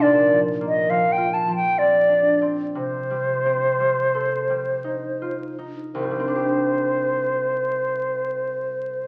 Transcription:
X:1
M:3/4
L:1/16
Q:1/4=57
K:Cdor
V:1 name="Flute"
d3 e f g a g d3 z | c8- c2 z2 | c12 |]
V:2 name="Harp"
(3[B,,CD]2 F,2 B,2 (3F,2 F2 F,2 (3C2 D2 C2 | (3C,2 G,2 C2 (3G,2 A2 G,2 (3E2 F2 E2- | E12 |]
V:3 name="Harp"
z12 | z12 | [C,,G,,G,CDG]12 |]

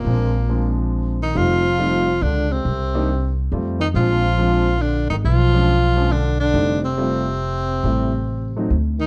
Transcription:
X:1
M:3/4
L:1/8
Q:"Swing" 1/4=139
K:Fmix
V:1 name="Tenor saxophone"
B,3 z2 E | F4 D C- | C3 z2 E | F4 D E |
F4 D D- | D C4- C- | C4 z E |]
V:2 name="Grand piano"
[F,_A,CD] z [F,A,CD]3 z | [G,A,CE] z [G,A,CE] z3 | z [G,B,DE] z2 [G,A,CF] z | [F,_A,CD] z [F,A,CD] z3 |
z [F,^G,_D=D] z [F,G,_D=D] z2 | [G,A,CE] z [G,A,CF] z3 | [G,A,C=E] z2 [_G,A,C_E] z2 |]
V:3 name="Trombone" clef=bass
B,,3 z2 E, | F,4 D, C,- | C,3 z2 E, | F,4 D, E, |
F,4 D, D,- | D, C,4- C,- | C,4 z E, |]
V:4 name="Upright bass" clef=bass
B,,,6 | F,,,4 _D,,2 | C,,4 F,,2 | B,,,4- B,,, _A,,, |
=B,,,6 | F,,,6 | A,,,4 D,,2 |]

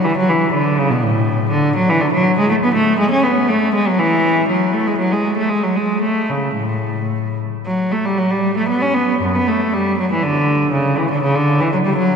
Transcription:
X:1
M:3/4
L:1/16
Q:1/4=120
K:D
V:1 name="Cello" clef=bass
E, F, E,2 D,2 C, B,, A,,4 | [K:A] D,2 F, E, D, F,2 G, A, B, A,2 | G, C B,2 A,2 G, F, E,4 | F,2 A, G, F, G,2 A, G, F, G,2 |
A,2 C,2 A,,6 z2 | [K:D] F,2 A, G, F, G,2 A, B, C B,2 | F,, B, A,2 G,2 F, E, D,4 | C,2 E, D, C, D,2 E, F, G, F,2 |]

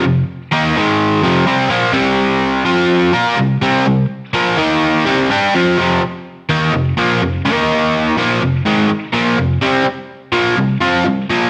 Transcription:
X:1
M:4/4
L:1/8
Q:1/4=125
K:Cmix
V:1 name="Overdriven electric guitar" clef=bass
[F,,C,] z [_E,B,_E] [_A,,E,_A,]2 [F,,C,F,] [C,G,C] [B,,F,B,] | [C,G,C]3 [F,CF]2 [B,FB] [C,G,] [C,G,C] | [C,G,] z [B,,F,B,] [_E,B,_E]2 [C,G,C] [G,DG] [F,CF] | [F,,C,F,] z2 [_E,B,_E] [F,,C,] [B,,F,B,] [F,,C,] [E,B,E]- |
[_E,B,_E]2 [B,,F,B,] [F,,C,] [_A,,E,_A,] z [B,,F,B,] [F,,C,] | [C,G,C] z2 [B,,F,B,] [C,G,] [F,CF] [C,G,] [B,,F,B,] |]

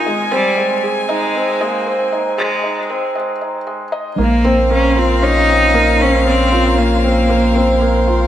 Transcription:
X:1
M:4/4
L:1/8
Q:1/4=116
K:Bbm
V:1 name="String quartet"
[A,,E,Ca]8- | [A,,E,Ca]4 z4 | [Bcf]8- | [Bcf]8 |]
V:2 name="Felt piano"
A, C A, A E C A, C | E A E C A, E A, e | B, C B, F D C B, C | D F D C B, C B, F |]
V:3 name="Cello"
z =G,2 z A,2 B,2 | z A,2 z4 z | B,2 D C E3 D | C2 B,4- B, z |]
V:4 name="Analog synth bass" clef=bass
z8 | z8 | B,,,8- | B,,,8 |]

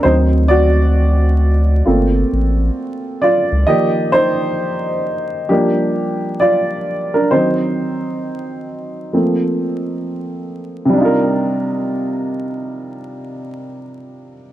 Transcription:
X:1
M:4/4
L:1/16
Q:"Swing 16ths" 1/4=66
K:Cdor
V:1 name="Upright piano"
[Ec]2 [^Fd]12 [=Fd]2 | [Ge]2 [Ec]6 [B,G]4 [Fd]3 [DB] | [Ec]12- [Ec]2 z2 | [C,G,DEFB]16 |]
V:2 name="Upright piano"
[E,^F,C]2 z6 [A,B,C=F]6 z2 | [E,F,B,d]6 z2 [F,G,D]6 z2 | [E,_G,C]6 z2 [F,A,B,C]2 z6 | z16 |]
V:3 name="Sub bass" clef=bass
D,,8 G,,,2 A,,,2 z3 _D,, | z16 | z16 | z16 |]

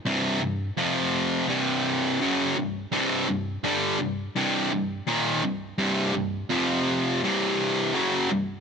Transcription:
X:1
M:4/4
L:1/8
Q:1/4=84
K:Cm
V:1 name="Distorted electric guitar" clef=bass
[C,,G,,C,] [C,,G,,] [F,,C,F,]2 [C,,G,,C,]2 [^F,,_D,^F,] [C,,G,,] | [C,,G,,C,] [C,,G,,] [G,,D,G,] [C,,G,,] [C,,G,,C,] [C,,G,,] [E,,B,,E,] [C,,G,,] | [C,,G,,C,] [C,,G,,] [F,,C,F,]2 [C,,G,,C,]2 [^F,,_D,^F,] [C,,G,,] |]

